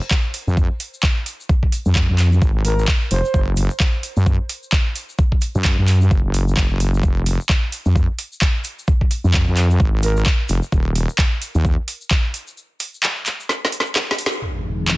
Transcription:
0.02 shaker
0.11 kick, clap, shaker
0.34 open hi-hat, shaker
0.47 wobble bass F2, shaker
0.57 kick, shaker
0.80 open hi-hat, shaker
0.94 shaker
1.03 kick, clap, shaker
1.26 open hi-hat, shaker
1.40 shaker
1.49 kick, shaker
1.63 kick
1.72 open hi-hat, shaker
1.86 wobble bass F2, shaker
1.95 kick, clap, shaker
2.09 wobble bass F2
2.19 clap, open hi-hat, shaker
2.32 shaker
2.42 wobble bass G#1, kick, shaker
2.65 soft synth lead A#4, open hi-hat, shaker
2.79 shaker
2.88 kick, clap, shaker
3.11 wobble bass F1, soft synth lead C5, open hi-hat, shaker
3.25 shaker
3.34 wobble bass F#1, kick, shaker
3.56 open hi-hat, shaker
3.70 shaker
3.80 kick, clap, shaker
4.03 open hi-hat, shaker
4.16 wobble bass F#2, shaker
4.26 kick, shaker
4.49 open hi-hat, shaker
4.63 shaker
4.72 kick, clap, shaker
4.96 open hi-hat, shaker
5.09 shaker
5.18 kick, shaker
5.32 kick
5.41 open hi-hat, shaker
5.55 wobble bass F#2, shaker
5.64 kick, clap, shaker
5.78 wobble bass F#2
5.88 clap, open hi-hat, shaker
6.01 shaker
6.11 wobble bass F#1, kick, shaker
6.24 wobble bass F#1
6.34 open hi-hat, shaker
6.48 shaker
6.56 wobble bass F#1, kick, clap, shaker
6.71 wobble bass F#1
6.80 open hi-hat, shaker
6.94 shaker
7.03 wobble bass F1, kick, shaker
7.26 open hi-hat, shaker
7.40 shaker
7.49 kick, clap, shaker
7.72 open hi-hat, shaker
7.85 wobble bass F2, shaker
7.96 kick, shaker
8.19 open hi-hat, shaker
8.32 shaker
8.41 kick, clap, shaker
8.64 open hi-hat, shaker
8.79 shaker
8.87 kick, shaker
9.01 kick
9.11 open hi-hat, shaker
9.24 wobble bass F2, shaker
9.34 kick, clap, shaker
9.47 wobble bass F2
9.57 clap, open hi-hat, shaker
9.70 shaker
9.80 wobble bass G#1, kick, shaker
10.03 soft synth lead A#4, open hi-hat, shaker
10.17 shaker
10.26 kick, clap, shaker
10.49 wobble bass F1, open hi-hat, shaker
10.62 shaker
10.72 wobble bass D#1, kick, shaker
10.95 open hi-hat, shaker
11.09 shaker
11.19 kick, clap, shaker
11.42 open hi-hat, shaker
11.55 wobble bass D#2, shaker
11.65 kick, shaker
11.88 open hi-hat, shaker
12.01 shaker
12.11 kick, clap, shaker
12.34 open hi-hat, shaker
12.47 shaker
12.57 shaker
12.80 open hi-hat, shaker
12.94 shaker
13.03 clap, shaker
13.26 clap, open hi-hat, shaker
13.40 shaker
13.49 snare, shaker
13.65 snare
13.72 open hi-hat, shaker
13.80 snare
13.86 shaker
13.96 snare, clap, shaker
14.11 snare
14.18 open hi-hat, shaker
14.26 snare
14.32 shaker
14.42 analog synth pad F3 C4 D#4 G#4, impact
14.88 clap

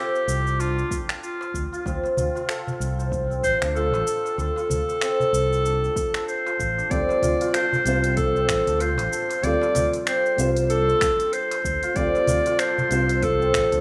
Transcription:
Already playing: santur C4 D4 F4 A4 C5, clarinet G4
0.15 shaker
0.28 fretless electric bass C2, shaker
0.47 shaker
0.60 santur D4, clarinet F4, shaker
0.79 shaker
0.91 kick, shaker
1.09 finger snap, shaker
1.23 clarinet F4, shaker
1.41 darbuka tek, shaker
1.54 fretless electric bass D2, kick, shaker
1.72 santur F4, shaker
1.86 fretless electric bass D2, santur C4, kick, darbuka ka, shaker
2.04 darbuka tek, shaker
2.17 fretless electric bass D2, santur F4, darbuka dum, shaker
2.35 santur F4, darbuka ka, shaker
2.48 santur A4, finger snap, shaker
2.67 darbuka dum, shaker
2.80 fretless electric bass C2, shaker
2.99 santur C5, shaker
3.12 kick, shaker
3.30 santur C4, shaker
3.43 fretless electric bass A1, clarinet C5, kick, darbuka ka, shaker
3.62 fretless electric bass D2, santur D4, finger snap, shaker
3.75 santur F4, clarinet A4, shaker
3.93 fretless electric bass A1, darbuka tek, shaker
4.06 santur A4, shaker
4.25 darbuka ka, shaker
4.38 fretless electric bass D2, clarinet A4, darbuka ka, shaker
4.56 santur F4, darbuka tek, shaker
4.70 fretless electric bass D2, darbuka dum, shaker
4.89 darbuka ka, shaker
5.01 santur C4, finger snap, shaker
5.20 darbuka dum, shaker
5.33 fretless electric bass C2, shaker
5.53 shaker
5.65 santur D4, shaker
5.84 shaker
5.96 kick, shaker
6.14 santur A4, finger snap, darbuka tek, shaker
6.28 clarinet C5, shaker
6.46 santur F4, darbuka tek, shaker
6.59 fretless electric bass A1, kick, shaker
6.78 santur D4, shaker
6.89 fretless electric bass D2, felt piano G3 C4 F4 A4, santur C4, clarinet D5, kick, closed hi-hat, darbuka ka, shaker
7.09 darbuka tek, shaker
7.22 fretless electric bass D2, santur F4, closed hi-hat, darbuka dum, shaker
7.40 santur F4, closed hi-hat, darbuka ka, shaker
7.54 santur A4, clarinet C5, finger snap, closed hi-hat, shaker
7.73 darbuka dum, shaker
7.84 fretless electric bass C2, felt piano G3 C4 F4, closed hi-hat, shaker
7.88 felt piano C5
8.04 santur C5, closed hi-hat, shaker
8.17 clarinet A4, kick, closed hi-hat, shaker
8.35 santur C4, shaker
8.49 fretless electric bass A1, finger snap, kick, closed hi-hat, darbuka ka, shaker
8.67 fretless electric bass D2, santur D4, closed hi-hat, shaker
8.80 santur F4, clarinet C5, closed hi-hat, shaker
8.98 fretless electric bass A1, closed hi-hat, darbuka tek, shaker
9.12 santur A4, shaker
9.30 closed hi-hat, darbuka ka, shaker
9.42 fretless electric bass D2, felt piano G3 C4 F4 A4, clarinet D5, closed hi-hat, darbuka ka, shaker
9.61 santur F4, darbuka tek, shaker
9.75 fretless electric bass D2, closed hi-hat, darbuka dum, shaker
9.94 closed hi-hat, darbuka ka, shaker
10.06 santur C4, clarinet C5, finger snap, closed hi-hat, shaker
10.26 shaker
10.36 fretless electric bass C2, felt piano G3 C4 F4, closed hi-hat, shaker
10.40 felt piano C5
10.57 closed hi-hat, shaker
10.70 santur D4, clarinet A4, closed hi-hat, shaker
10.89 shaker
11.01 finger snap, kick, closed hi-hat, shaker
11.20 closed hi-hat, shaker
11.33 clarinet C5, closed hi-hat, shaker
11.51 closed hi-hat, darbuka tek, shaker
11.64 fretless electric bass D2, kick, shaker
11.83 santur F4, closed hi-hat, shaker
11.94 fretless electric bass D2, felt piano G3 C4 F4 A4, santur C4, clarinet D5, kick, closed hi-hat, darbuka ka, shaker
12.15 darbuka tek, shaker
12.27 fretless electric bass D2, santur F4, closed hi-hat, darbuka dum, shaker
12.46 santur F4, closed hi-hat, darbuka ka, shaker
12.59 santur A4, clarinet C5, finger snap, closed hi-hat, shaker
12.78 darbuka dum, shaker
12.88 fretless electric bass C2, felt piano G3 C4 F4, closed hi-hat, shaker
12.93 felt piano C5
13.09 santur C5, closed hi-hat, shaker
13.22 clarinet A4, kick, closed hi-hat, shaker
13.40 santur C4, shaker
13.53 fretless electric bass A1, finger snap, kick, closed hi-hat, darbuka ka, shaker
13.72 fretless electric bass D2, santur D4, closed hi-hat, shaker

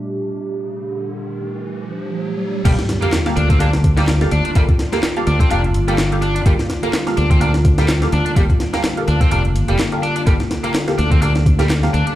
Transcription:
Already playing: ambient pad A#2 G3 A3 D4 G4, riser
2.65 fingered electric bass G1, ambient pad D3 G3 A#3 F4, distorted electric guitar G3, synth stab A#3 G4 A4 F5, kick, closed hi-hat, crash, sub drop
2.79 snare, closed hi-hat
2.89 snare, closed hi-hat
3.02 distorted electric guitar A#3, synth stab A#3 G4 A4 F5, closed hi-hat
3.13 snare, clap, closed hi-hat
3.26 synth stab A#3 G4 A4 F5, snare, closed hi-hat
3.37 fingered electric bass D2, distorted electric guitar D4, closed hi-hat
3.50 distorted electric guitar C4, kick, closed hi-hat
3.60 synth stab A#3 G4 A4 F5, distorted electric guitar D4, closed hi-hat
3.73 snare, closed hi-hat
3.84 kick, closed hi-hat
3.97 distorted electric guitar G3, synth stab A#3 G4 A4 F5, snare, closed hi-hat
4.08 snare, clap, closed hi-hat
4.21 synth stab A#3 G4 A4 F5, snare, closed hi-hat
4.31 fingered electric bass D2, distorted electric guitar D4, closed hi-hat
4.45 distorted electric guitar D4, closed hi-hat
4.55 fingered electric bass G1, distorted electric guitar G3, synth stab A#3 G4 A4 F5, kick, closed hi-hat
4.69 kick, closed hi-hat
4.79 snare, closed hi-hat
4.93 distorted electric guitar A#3, synth stab A#3 G4 A4 F5, snare, closed hi-hat
5.03 snare, clap, closed hi-hat
5.17 synth stab A#3 G4 A4 F5, closed hi-hat
5.27 fingered electric bass D2, distorted electric guitar D4, closed hi-hat
5.40 distorted electric guitar C4, kick, closed hi-hat
5.51 fingered electric bass F1, synth stab A#3 G4 A4 F5, distorted electric guitar D4, closed hi-hat
5.64 closed hi-hat
5.74 fingered electric bass G1, closed hi-hat
5.88 distorted electric guitar G3, synth stab A#3 G4 A4 F5, closed hi-hat
5.98 snare, clap, closed hi-hat
6.12 synth stab A#3 G4 A4 F5, closed hi-hat
6.22 distorted electric guitar D4, closed hi-hat
6.36 distorted electric guitar D4, closed hi-hat
6.46 fingered electric bass G1, distorted electric guitar G3, synth stab A#3 G4 A4 F5, kick, closed hi-hat
6.59 snare, closed hi-hat
6.70 snare, closed hi-hat
6.83 synth stab A#3 G4 A4 F5, distorted electric guitar A#3, closed hi-hat
6.93 snare, clap, closed hi-hat
7.07 synth stab A#3 G4 A4 F5, snare, closed hi-hat
7.17 fingered electric bass D2, distorted electric guitar D4, closed hi-hat
7.31 distorted electric guitar C4, kick, closed hi-hat
7.41 synth stab A#3 G4 A4 F5, distorted electric guitar D4, closed hi-hat
7.54 snare, closed hi-hat
7.65 kick, closed hi-hat
7.78 distorted electric guitar G3, synth stab A#3 G4 A4 F5, snare, closed hi-hat
7.89 snare, clap, closed hi-hat
8.02 synth stab A#3 G4 A4 F5, snare, closed hi-hat
8.12 fingered electric bass D2, distorted electric guitar D4, closed hi-hat
8.26 distorted electric guitar D4, closed hi-hat
8.36 fingered electric bass G1, distorted electric guitar G3, synth stab A#3 G4 A4 F5, kick, closed hi-hat
8.50 kick, closed hi-hat
8.60 snare, closed hi-hat
8.73 synth stab A#3 G4 A4 F5, distorted electric guitar A#3, snare, closed hi-hat
8.84 snare, clap, closed hi-hat
8.97 synth stab A#3 G4 A4 F5, closed hi-hat
9.08 fingered electric bass D2, distorted electric guitar D4, closed hi-hat
9.21 distorted electric guitar C4, kick, closed hi-hat
9.31 fingered electric bass F1, synth stab A#3 G4 A4 F5, distorted electric guitar D4, closed hi-hat
9.45 closed hi-hat
9.56 fingered electric bass G1, closed hi-hat
9.68 fingered electric bass F1, distorted electric guitar G3, synth stab A#3 G4 A4 F5, closed hi-hat
9.79 snare, clap, closed hi-hat
9.92 synth stab A#3 G4 A4 F5, closed hi-hat
10.03 distorted electric guitar D4, closed hi-hat
10.16 distorted electric guitar D4, closed hi-hat
10.27 fingered electric bass G1, distorted electric guitar G3, synth stab A#3 G4 A4 F5, ambient pad A4, kick, closed hi-hat
10.40 snare, closed hi-hat
10.51 snare, closed hi-hat
10.64 synth stab A#3 G4 A4 F5, distorted electric guitar A#3, closed hi-hat
10.74 snare, clap, closed hi-hat
10.88 synth stab A#3 G4 A4 F5, snare, closed hi-hat
10.98 fingered electric bass D2, distorted electric guitar D4, closed hi-hat
11.12 distorted electric guitar C4, kick, closed hi-hat
11.22 synth stab A#3 G4 A4 F5, distorted electric guitar D4, closed hi-hat
11.35 snare, closed hi-hat
11.46 kick, closed hi-hat
11.59 distorted electric guitar G3, synth stab A#3 G4 A4 F5, snare, closed hi-hat
11.70 snare, clap, closed hi-hat
11.83 synth stab A#3 G4 A4 F5, snare, closed hi-hat
11.94 fingered electric bass D2, distorted electric guitar D4, closed hi-hat
12.07 distorted electric guitar D4, closed hi-hat

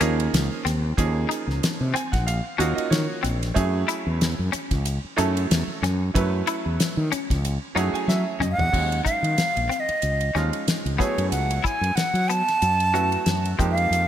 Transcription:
0.00 fretless electric bass D#2, grand piano F3 A#3 C#4 D#4 G#4, clean electric guitar C#4, hi-hat pedal, ride
0.20 ride
0.34 fretless electric bass C#2, snare, hi-hat pedal, ride
0.65 fretless electric bass D#2, clean electric guitar C4, snare, hi-hat pedal, ride
0.97 fretless electric bass D#2, grand piano F3 A#3 C#4 D#4 G#4, kick, hi-hat pedal, ride
1.29 clean electric guitar D#4, hi-hat pedal, ride
1.47 fretless electric bass C#2, snare
1.63 snare, hi-hat pedal, ride
1.81 fretless electric bass C3
1.94 clean electric guitar C4, grand piano G#5, muted fretless electric bass stroke, hi-hat pedal, ride
2.12 fretless electric bass A#1, grand piano F#5, kick, snare, ride
2.27 grand piano F5, hi-hat pedal, ride
2.58 fretless electric bass D#2, grand piano A#3 C#4 D#4 F4 F#4, clean electric guitar C#4, hi-hat pedal, ride
2.75 grand piano D#5, ride
2.90 fretless electric bass D#3, grand piano C#5, snare, hi-hat pedal, ride
3.23 fretless electric bass A#1, clean electric guitar C4, hi-hat pedal, ride
3.43 snare, ride
3.54 fretless electric bass F#2, grand piano F#3 A3 C#4 E4 G#4, kick, hi-hat pedal, ride
3.88 clean electric guitar E4, hi-hat pedal, ride
4.07 fretless electric bass E2
4.21 snare, hi-hat pedal, ride
4.39 fretless electric bass F#2
4.52 clean electric guitar C#4, muted fretless electric bass stroke, hi-hat pedal, ride
4.71 fretless electric bass C#2, kick, snare, ride
4.85 hi-hat pedal, ride
5.05 muted fretless electric bass stroke
5.17 fretless electric bass F#2, grand piano F#3 A3 C#4 E4 A4, clean electric guitar D#4, hi-hat pedal, ride
5.37 ride
5.51 fretless electric bass E2, snare, hi-hat pedal, ride
5.67 muted fretless electric bass stroke
5.82 fretless electric bass F#2, clean electric guitar C#4, snare, hi-hat pedal, ride
6.14 fretless electric bass F#2, grand piano F#3 A3 C#4 E4 B4, kick, hi-hat pedal, ride
6.47 clean electric guitar E4, hi-hat pedal, ride
6.66 fretless electric bass E2
6.80 snare, hi-hat pedal, ride
6.97 fretless electric bass D#3
7.12 clean electric guitar C#4, muted fretless electric bass stroke, hi-hat pedal, ride
7.30 fretless electric bass C#2, kick, snare, ride
7.45 hi-hat pedal, ride
7.75 fretless electric bass F#2, grand piano F#3 A3 C#4 E4 G#4 F#5, clean electric guitar D#4, hi-hat pedal, ride
7.93 grand piano G#5, muted fretless electric bass stroke, ride
8.08 fretless electric bass F#3, grand piano E5, snare, hi-hat pedal
8.40 fretless electric bass F#2, clean electric guitar C#4, grand piano D#5, hi-hat pedal, mid tom
8.52 flute F#5
8.58 fretless electric bass E2, floor tom
8.72 fretless electric bass D#2, grand piano F#3 G#3 C#4 D#4 F#4, kick, crash
8.92 ride
9.05 clean electric guitar D#4, flute F5, kick, hi-hat pedal
9.23 fretless electric bass D#3, ride
9.38 muted fretless electric bass stroke, snare, hi-hat pedal, ride
9.57 fretless electric bass A#1, ride
9.69 clean electric guitar C4, hi-hat pedal
9.80 flute D#5
9.89 muted fretless electric bass stroke, ride
10.02 fretless electric bass C#2, hi-hat pedal, ride
10.21 ride
10.35 fretless electric bass D#2, grand piano F3 G#3 C#4 D#4 F4, clean electric guitar C#4, snare, hi-hat pedal
10.53 ride
10.67 muted fretless electric bass stroke, snare, hi-hat pedal, ride
10.86 fretless electric bass C#2, ride
10.98 grand piano F#3 A3 B3 E4 G#4, clean electric guitar B3, flute C#5, muted fretless electric bass stroke, kick, hi-hat pedal
11.18 fretless electric bass F#2, ride
11.31 fretless electric bass C#2, flute F#5, hi-hat pedal, ride
11.51 ride
11.64 clean electric guitar E4, flute G#5, kick, hi-hat pedal
11.81 fretless electric bass F#2, ride
11.95 flute F#5, muted fretless electric bass stroke, snare, hi-hat pedal, ride
12.14 fretless electric bass F#3, ride
12.28 clean electric guitar B3, flute A5, hi-hat pedal
12.48 snare, ride
12.62 fretless electric bass F#2, hi-hat pedal, ride
12.80 ride
12.94 grand piano F#3 A3 B3 E4 F#4, clean electric guitar C#4, hi-hat pedal
13.12 ride
13.26 fretless electric bass F#2, snare, hi-hat pedal, ride
13.45 ride
13.58 fretless electric bass F2, grand piano F3 G#3 A#3 D#4 G4, clean electric guitar C4, kick, hi-hat pedal
13.71 flute F5
13.77 ride
13.91 fretless electric bass F2, hi-hat pedal, ride

